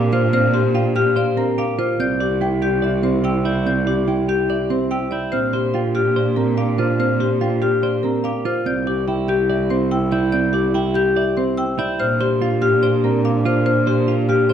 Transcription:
0.00 1.88 A#2 medium
0.00 1.75 D4 medium
0.00 0.12 G4 medium
0.00 0.19 F5 medium
0.00 0.18 D6 loud
0.12 0.39 F4 loud
0.12 0.32 C5 medium
0.12 0.32 F6 medium
0.33 0.60 C4 medium
0.33 0.60 C5 medium
0.33 0.60 F6 loud
0.54 0.81 G4 medium
0.54 0.81 C5 medium
0.54 0.81 C6 medium
0.74 0.95 F4 medium
0.74 1.02 F5 medium
0.74 1.02 G5 medium
0.96 1.23 G4 medium
0.96 1.23 G4 loud
0.96 1.23 F6 loud
1.16 1.43 C5 medium
1.16 1.43 D5 medium
1.16 1.43 F5 medium
1.37 1.64 C4 medium
1.37 1.64 A#4 medium
1.37 1.64 A#5 medium
1.58 1.85 G4 medium
1.58 1.85 F5 medium
1.58 1.85 D6 medium
1.78 2.06 F4 medium
1.78 2.06 C5 medium
1.78 2.06 F6 medium
1.99 5.20 C2 medium
1.99 2.27 C4 medium
1.99 5.08 E4 medium
1.99 2.27 D5 medium
1.99 2.27 G6 medium
2.20 2.48 G4 medium
2.20 2.47 D5 medium
2.20 2.48 D6 medium
2.41 2.68 E4 medium
2.41 2.68 G5 medium
2.62 2.89 G4 medium
2.62 2.89 G6 medium
2.82 3.10 D5 medium
2.82 3.10 E5 medium
3.03 3.31 C4 medium
3.03 3.31 C5 medium
3.03 3.31 C6 medium
3.24 3.51 G4 medium
3.24 3.51 G5 medium
3.24 3.52 E6 medium
3.45 3.72 E4 medium
3.45 3.66 D5 medium
3.45 3.65 G6 medium
3.66 3.93 C4 medium
3.66 3.93 D5 medium
3.66 3.93 G6 medium
3.87 4.14 G4 medium
3.87 4.14 D5 medium
3.87 4.14 D6 medium
4.08 4.35 E4 medium
4.08 4.35 G5 medium
4.28 4.56 G4 medium
4.28 4.56 G6 medium
4.49 4.77 D5 medium
4.49 4.77 E5 medium
4.70 4.97 C4 medium
4.70 4.97 C5 medium
4.70 4.97 C6 medium
4.91 5.18 G4 medium
4.91 5.18 G5 medium
4.91 5.18 E6 medium
5.11 5.39 E4 medium
5.11 5.39 D5 medium
5.11 5.39 G6 medium
5.32 8.54 A#2 medium
5.32 5.60 C4 medium
5.32 8.41 D4 medium
5.32 5.60 C5 medium
5.32 5.60 F6 medium
5.53 5.81 G4 medium
5.53 5.81 C5 medium
5.53 5.81 C6 medium
5.74 6.02 F4 medium
5.74 6.01 F5 medium
5.74 6.02 G5 medium
5.95 6.22 G4 medium
5.95 6.22 F6 medium
6.16 6.43 C5 medium
6.16 6.43 D5 medium
6.36 6.64 C4 medium
6.36 6.64 A#4 medium
6.36 6.64 A#5 medium
6.57 6.85 G4 medium
6.57 6.85 F5 medium
6.57 6.85 D6 medium
6.78 7.06 F4 medium
6.78 6.99 C5 medium
6.78 6.98 F6 medium
7.00 7.27 C4 medium
7.00 7.27 C5 medium
7.00 7.27 F6 medium
7.20 7.47 G4 medium
7.20 7.47 C5 medium
7.20 7.48 C6 medium
7.41 7.68 F4 medium
7.41 7.68 F5 medium
7.41 7.68 G5 medium
7.62 7.89 G4 medium
7.62 7.89 F6 medium
7.83 8.10 C5 medium
7.83 8.10 D5 medium
8.03 8.31 C4 medium
8.03 8.31 A#4 medium
8.03 8.31 A#5 medium
8.24 8.52 G4 medium
8.24 8.51 F5 medium
8.24 8.52 D6 medium
8.45 8.72 F4 medium
8.45 8.72 C5 medium
8.45 8.72 F6 medium
8.66 11.88 C2 medium
8.66 8.93 C4 medium
8.66 11.75 E4 medium
8.66 8.93 D5 medium
8.66 8.93 G6 medium
8.87 9.14 G4 medium
8.87 9.08 D5 medium
8.87 9.14 D6 medium
9.08 9.35 E4 medium
9.08 9.35 G5 medium
9.28 9.56 G4 medium
9.28 9.56 G6 medium
9.50 9.77 D5 medium
9.50 9.77 E5 medium
9.70 9.98 C4 medium
9.70 9.97 C5 medium
9.70 9.97 C6 medium
9.91 10.18 G5 medium
9.91 10.18 E6 medium
10.12 10.39 E4 medium
10.12 10.31 D5 medium
10.12 10.31 G6 medium
10.32 10.60 C4 medium
10.32 10.60 D5 medium
10.32 10.60 G6 medium
10.53 10.81 G4 medium
10.53 10.75 D5 medium
10.53 10.81 D6 medium
10.74 11.02 E4 medium
10.74 11.02 G5 medium
10.95 11.22 G4 medium
10.95 11.23 G4 medium
10.95 11.22 G6 medium
11.16 11.43 D5 medium
11.16 11.43 E5 medium
11.37 11.64 C4 medium
11.37 11.64 C5 medium
11.37 11.64 C6 medium
11.57 11.85 G5 medium
11.57 11.85 E6 loud
11.78 12.06 E4 loud
11.78 12.06 D5 medium
11.78 12.06 G6 medium
12.00 14.53 A#2 medium
12.00 14.53 D4 medium
12.00 12.27 C5 medium
12.00 12.27 F6 medium
12.21 12.48 G4 medium
12.21 12.48 C5 medium
12.21 12.48 C6 medium
12.41 12.68 F4 medium
12.41 12.68 F5 medium
12.62 12.89 G4 medium
12.62 12.89 F6 loud
12.83 13.10 C5 medium
12.83 13.10 D5 medium
13.04 13.31 C4 medium
13.04 13.31 A#4 medium
13.04 13.31 A#5 medium
13.25 13.52 F5 medium
13.25 13.52 D6 medium
13.45 13.72 F4 medium
13.45 13.65 C5 medium
13.45 13.65 F6 medium
13.66 13.93 C5 medium
13.66 13.93 F6 medium
13.87 14.14 G4 medium
13.87 14.14 C5 medium
13.87 14.14 C6 medium
14.08 14.29 F4 medium
14.08 14.35 F5 medium
14.29 14.53 G4 medium
14.29 14.53 F6 medium
14.49 14.53 C5 medium
14.49 14.53 D5 medium

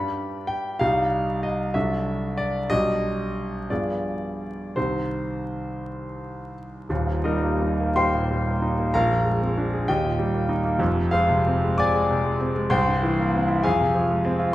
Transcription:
0.00 0.78 G2 soft
0.00 0.78 G3 soft
0.00 0.78 D4 soft
0.00 0.78 G4 soft
0.00 0.49 B5 medium
0.47 0.80 G5 medium
0.79 1.72 C2 medium
0.79 1.72 G3 soft
0.79 1.73 D#4 soft
0.79 1.73 G4 soft
0.79 1.43 F5 medium
1.43 1.75 D#5 medium
1.74 2.67 C2 medium
1.74 2.67 F#3 soft
1.74 2.67 D4 soft
1.74 2.67 A4 soft
1.74 2.37 E5 medium
2.37 2.70 D5 medium
2.70 3.67 B1 medium
2.70 3.67 G3 soft
2.70 3.67 D4 soft
2.70 3.67 G4 soft
2.70 3.70 D#5 loud
3.70 4.73 G2 soft
3.70 4.74 F3 soft
3.70 4.74 B3 soft
3.70 4.74 G#4 soft
3.70 4.76 D5 medium
4.76 6.86 C2 soft
4.76 6.86 D#3 soft
4.76 6.86 C4 soft
4.76 6.86 G4 soft
4.76 6.55 C5 medium
6.89 8.89 D#1 medium
6.89 8.90 D#2 medium
7.07 7.35 A#2 soft
7.24 7.53 G3 soft
7.24 7.60 D#4 medium
7.24 7.93 A#4 medium
7.24 7.96 D#5 medium
7.43 7.72 A#3 soft
7.62 7.90 D#4 soft
7.80 8.07 A#3 soft
7.96 8.23 G3 soft
7.96 8.90 C5 medium
7.96 8.90 G5 medium
7.96 8.93 C6 medium
8.15 8.40 A#2 soft
8.31 8.56 G3 soft
8.47 8.72 A#3 soft
8.62 8.87 D#4 soft
8.78 8.94 A#3 soft
8.94 9.86 A#1 medium
8.94 9.85 A#4 medium
8.94 9.85 F5 medium
8.94 9.88 A#5 medium
9.10 9.35 F2 soft
9.25 9.51 G#3 soft
9.41 9.66 C4 soft
9.57 9.82 D4 soft
9.73 9.89 G#4 medium
9.88 10.78 D#2 medium
9.88 10.77 G4 medium
9.88 10.77 D#5 medium
9.88 10.81 G5 medium
10.05 10.29 A#2 soft
10.19 10.44 G3 soft
10.34 10.59 A#3 soft
10.49 10.74 D#4 medium
10.65 10.80 A#3 medium
10.79 12.68 F1 medium
10.79 12.68 F2 medium
10.95 11.23 C3 soft
11.11 11.40 G#3 medium
11.11 11.76 F4 medium
11.11 11.76 C5 medium
11.11 11.80 F5 medium
11.29 11.57 C3 medium
11.47 11.74 C4 medium
11.64 11.90 G#3 medium
11.78 12.05 C3 soft
11.78 12.68 D5 medium
11.78 12.68 G#5 medium
11.78 12.71 D6 medium
11.94 12.20 G#3 soft
12.11 12.35 C3 medium
12.25 12.50 G#3 soft
12.40 12.66 C4 medium
12.55 12.72 G#3 medium
12.70 13.61 C2 medium
12.70 13.60 C5 medium
12.70 13.60 G5 medium
12.70 13.63 C6 medium
12.87 13.12 G2 soft
13.03 13.28 E3 medium
13.19 13.44 A#3 medium
13.34 13.59 C4 medium
13.48 13.64 E4 medium
13.63 14.51 F2 medium
13.63 14.50 G#4 medium
13.63 14.50 F5 medium
13.63 14.53 G#5 medium
13.80 14.04 C3 medium
13.95 14.19 F3 medium
14.10 14.34 G#3 medium
14.25 14.49 C4 medium
14.39 14.54 F4 medium

